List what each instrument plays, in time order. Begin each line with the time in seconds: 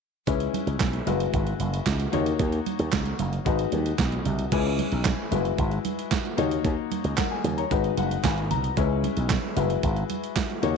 0.27 slap bass C#2, grand piano G#3 C#4 E4 B4, kick, closed hi-hat
0.40 closed hi-hat
0.54 closed hi-hat, muted conga, high conga
0.67 slap bass C#2, closed hi-hat
0.80 slap bass B1, kick, snare, clap, closed hi-hat, muted conga, high conga
0.93 closed hi-hat
1.06 slap bass F#1, grand piano G#3 E4 F#4 B4, closed hi-hat, muted conga, high conga, low conga
1.20 closed hi-hat
1.33 slap bass G#1, kick, closed hi-hat, muted conga
1.47 closed hi-hat
1.60 slap bass F#1, closed hi-hat, high conga
1.74 closed hi-hat
1.86 slap bass C#2, kick, snare, clap, closed hi-hat
2.00 closed hi-hat
2.12 slap bass D#2, grand piano A#3 D#4 F#4 C#5, closed hi-hat, muted conga, low conga
2.26 closed hi-hat
2.39 slap bass D#2, kick, closed hi-hat, muted conga
2.52 closed hi-hat
2.66 closed hi-hat, muted conga, high conga
2.79 slap bass D#2, closed hi-hat
2.92 slap bass C#2, kick, snare, clap, closed hi-hat, high conga
3.05 closed hi-hat
3.19 slap bass F#1, closed hi-hat, muted conga, high conga, low conga
3.33 closed hi-hat
3.45 slap bass G#1, grand piano G#3 D#4 F#4 B4, kick, closed hi-hat, muted conga
3.59 closed hi-hat
3.72 slap bass D#2, closed hi-hat, muted conga, high conga
3.86 closed hi-hat
3.99 slap bass B1, kick, snare, clap, closed hi-hat
4.12 closed hi-hat
4.25 slap bass C2, closed hi-hat, low conga
4.39 closed hi-hat
4.52 slap bass C#2, grand piano G#3 C#4 E4 B4, kick, closed hi-hat, crash
4.79 closed hi-hat, high conga
4.92 slap bass B1, closed hi-hat
5.05 kick, snare, clap, closed hi-hat, muted conga, high conga
5.31 slap bass F#1, grand piano G#3 E4 F#4 B4, closed hi-hat, high conga, low conga
5.45 closed hi-hat
5.58 slap bass G#1, kick, closed hi-hat, muted conga
5.71 closed hi-hat
5.85 closed hi-hat, muted conga, high conga
5.99 closed hi-hat
6.11 kick, snare, clap, closed hi-hat, muted conga, high conga
6.25 closed hi-hat
6.37 slap bass D#2, grand piano A#3 D#4 F#4 C#5, closed hi-hat, muted conga, low conga
6.51 closed hi-hat
6.65 slap bass D#2, kick, closed hi-hat, muted conga
6.92 closed hi-hat, muted conga, high conga
7.04 slap bass C#2, closed hi-hat
7.17 grand piano A#4 F#5, kick, snare, clap, closed hi-hat, muted conga, high conga
7.31 grand piano G#5
7.44 slap bass D#2, closed hi-hat, muted conga, high conga, low conga
7.58 grand piano C#5 A#5, closed hi-hat
7.70 slap bass G#1, grand piano G#3 D#4 F#4 B4, kick, closed hi-hat
7.84 closed hi-hat
7.97 slap bass F#1, grand piano F#5, closed hi-hat, high conga
8.11 closed hi-hat
8.24 slap bass G#1, grand piano G#5, kick, snare, clap, closed hi-hat, muted conga, high conga
8.38 closed hi-hat
8.51 slap bass C2, grand piano A#5, closed hi-hat, low conga
8.64 closed hi-hat
8.77 slap bass C#2, grand piano G#3 C#4 E4 B4, kick, closed hi-hat
9.04 closed hi-hat, muted conga, high conga
9.17 slap bass B1, closed hi-hat
9.30 kick, snare, clap, closed hi-hat, muted conga, high conga
9.56 slap bass F#1, grand piano G#3 E4 F#4 B4, closed hi-hat, muted conga, high conga, low conga
9.70 closed hi-hat
9.83 slap bass G#1, kick, closed hi-hat
9.96 closed hi-hat
10.10 closed hi-hat, muted conga, high conga
10.24 closed hi-hat
10.36 kick, snare, clap, closed hi-hat, high conga
10.50 closed hi-hat
10.62 slap bass D#2, grand piano A#3 D#4 F#4 C#5, closed hi-hat, muted conga, low conga